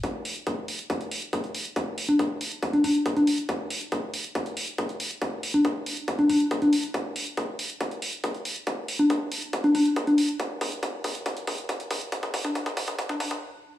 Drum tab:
HH |x-oxx-oxxxoxxxox|x-oxx-oxxxoxxxox|x-oxx-oxxxoxxxox|x-oxx-oxxxoxxxox|
CG |----------------|---o-----oo--o--|----------------|---o-----oo--o--|
BD |o---o---o---o---|o---o---o---o---|o---o---o---o---|o---o---o---o---|

HH |x-oxx-oxxxoxxxox|x-oxx-oxxxoxxxox|x-oxx-oxxxoxxxox|xxoxxxoxxxox----|
CG |----------------|---o-----oo--o--|----------------|---o-----oo-----|
BD |o---o---o---o---|o---o---o---o---|o-o-o-o-o-o-o-o-|oooooooooooo----|